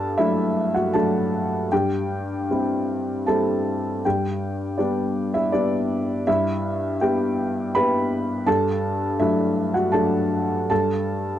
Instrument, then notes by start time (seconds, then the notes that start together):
upright piano
Already playing: G2 A4 A5
0.18 F#3 A3 D4 E4 E5
0.74 F#4 F#5
0.93 F#3 A3 D4 A4 A5
1.72 G2 G4 G5
2.50 G3 C4 E4
3.27 G3 C4 E4 A4 A5
4.05 G2 G4 G5
4.78 G3 B3 D4 D5
5.34 E4 E5
5.52 G3 B3 D4 D5
6.27 G2 E4 E5
7.01 G3 B3 E4 G4 G5
7.75 G3 B3 E4 B4 B5
8.47 G2 A4 A5
9.20 F#3 A3 D4 E4 E5
9.74 F#4 F#5
9.92 F#3 A3 D4 A4 A5
10.70 G2 A4 A5